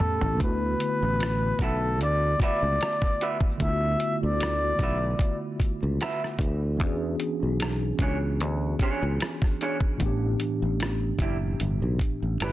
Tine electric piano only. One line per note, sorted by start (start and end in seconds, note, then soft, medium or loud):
0.00 0.40 A2 soft
0.00 0.38 A3 soft
0.00 0.40 B3 soft
0.00 0.41 C#4 soft
0.00 0.42 G4 soft
0.00 0.45 A4 soft
0.37 3.55 D3 medium
0.37 3.56 A3 soft
0.42 3.57 B3 soft
0.42 3.58 E4 medium
0.46 3.59 F#4 medium
3.57 6.75 D3 medium
3.57 6.76 A3 soft
3.62 6.77 B3 medium
3.62 6.78 E4 medium
3.66 3.70 F4 soft
3.73 6.82 F#4 medium
6.77 9.94 E3 medium
6.77 9.95 B3 medium
6.77 9.96 C#4 medium
6.82 9.97 D4 medium
6.82 9.98 F#4 medium
6.82 9.99 G#4 medium
9.97 12.52 A2 medium
9.97 12.52 E3 medium
10.01 12.52 B3 medium
10.01 12.52 D4 medium
10.06 12.52 G4 medium